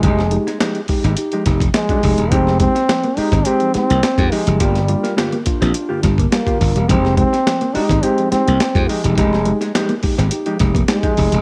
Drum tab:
HH |x-xxxxoxxxxxxxox|x-xxxxoxxxxxxxox|xxxxxxxxx-xxxxox|x-xxxxoxxxxxxxox|
SD |-o-oo--o--o-o---|-o-oo--o--o-o---|-o-oo--o--o-o---|-o-oo--o--o-o---|
BD |o-----o---oo-oo-|o-o----o-----o--|o-----o---oo-oo-|o-o----o-----o--|

HH |x-xxxxoxxxxxxxox|
SD |-o-oo--o--o-o---|
BD |o-----o---oo-oo-|